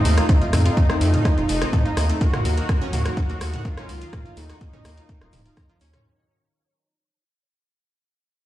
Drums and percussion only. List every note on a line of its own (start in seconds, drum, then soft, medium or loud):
0.05 open hi-hat loud
0.18 cross-stick medium
0.18 closed hi-hat medium
0.29 kick loud
0.29 closed hi-hat medium
0.42 closed hi-hat soft
0.53 cross-stick medium
0.53 mid tom loud
0.53 open hi-hat loud
0.66 closed hi-hat medium
0.77 kick loud
0.77 closed hi-hat medium
0.90 cross-stick medium
0.90 closed hi-hat soft
1.01 open hi-hat loud
1.14 closed hi-hat medium
1.14 mid tom medium
1.25 kick loud
1.25 cross-stick medium
1.25 closed hi-hat medium
1.38 closed hi-hat soft
1.49 open hi-hat loud
1.62 cross-stick medium
1.62 closed hi-hat medium
1.73 kick loud
1.73 closed hi-hat medium
1.73 mid tom loud
1.86 closed hi-hat soft
1.97 cross-stick medium
1.97 open hi-hat loud
2.10 closed hi-hat medium
2.21 kick loud
2.21 closed hi-hat medium
2.34 cross-stick medium
2.34 closed hi-hat soft
2.34 mid tom loud
2.45 open hi-hat loud
2.57 closed hi-hat medium
2.69 kick loud
2.69 cross-stick medium
2.69 closed hi-hat medium
2.81 closed hi-hat soft
2.93 mid tom loud
2.93 open hi-hat loud
3.06 cross-stick medium
3.06 closed hi-hat medium
3.17 kick loud
3.17 closed hi-hat medium
3.30 closed hi-hat soft
3.41 cross-stick medium
3.41 open hi-hat loud
3.54 closed hi-hat medium
3.54 mid tom loud
3.65 kick loud
3.65 closed hi-hat medium
3.77 cross-stick medium
3.77 closed hi-hat soft
3.89 open hi-hat loud
4.01 closed hi-hat medium
4.13 kick loud
4.13 cross-stick medium
4.13 closed hi-hat medium
4.13 mid tom loud
4.25 closed hi-hat soft
4.37 open hi-hat loud
4.49 cross-stick medium
4.49 closed hi-hat medium
4.61 kick loud
4.61 closed hi-hat medium
4.73 closed hi-hat soft
4.73 mid tom loud
4.85 cross-stick medium
4.85 open hi-hat loud
4.97 closed hi-hat medium
5.09 kick loud
5.09 closed hi-hat medium
5.21 cross-stick medium
5.21 closed hi-hat soft
5.33 mid tom loud
5.33 open hi-hat loud
5.45 closed hi-hat medium
5.57 kick loud
5.57 cross-stick medium
5.57 open hi-hat medium
5.70 closed hi-hat soft
5.81 open hi-hat loud
5.93 cross-stick medium
5.93 closed hi-hat medium
5.93 mid tom loud